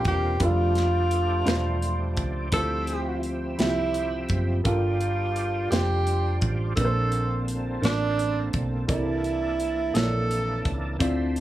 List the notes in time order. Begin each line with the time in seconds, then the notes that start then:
Already playing: C3 D3 A#3 C4 D4 F4 B4 C5
0.05 E1 G4, kick, closed hi-hat
0.40 F1 F3 G3 A3 D4 F4 A4, kick, closed hi-hat
0.44 F4 G4
0.75 snare, closed hi-hat
1.11 closed hi-hat
1.45 E1 G3 D4 F4 C5, snare, closed hi-hat
1.82 closed hi-hat
2.17 C#2, kick, closed hi-hat
2.52 D2 D3 F3 G3 C4 E4 F4 G4 A4 C5 E5, kick, closed hi-hat
2.87 closed hi-hat
3.23 closed hi-hat
3.58 C2 F3 G3 E4 G4, snare, closed hi-hat
3.94 closed hi-hat
4.29 F#1, kick, closed hi-hat
4.64 G1 G2 G3 D4 F4 G4 A4 A#4, kick, closed hi-hat
5.00 closed hi-hat
5.36 closed hi-hat
5.70 F1 A3 F4 G4 C5, snare, closed hi-hat
6.07 closed hi-hat
6.41 A1, kick, closed hi-hat
6.76 A#1 A#2 D3 A#3 C4 D4 A4 B4, kick, closed hi-hat
6.85 C5
7.12 closed hi-hat
7.48 closed hi-hat
7.81 A1 A#3 D4 A4 C5, snare, closed hi-hat
7.91 D5
8.19 closed hi-hat
8.53 B1, kick, closed hi-hat
8.87 C2 C3 D3 A#3 D4 E4 A4 D5, kick, closed hi-hat
8.96 E3
9.24 closed hi-hat
9.60 closed hi-hat
9.94 A#1 A#3 E4 A4 C#5, snare, closed hi-hat
10.03 D5
10.31 closed hi-hat
10.65 C#2, kick, closed hi-hat
10.99 D2 D3 C4 D4 E4 F4 C5 D5 E5, kick, closed hi-hat
11.36 closed hi-hat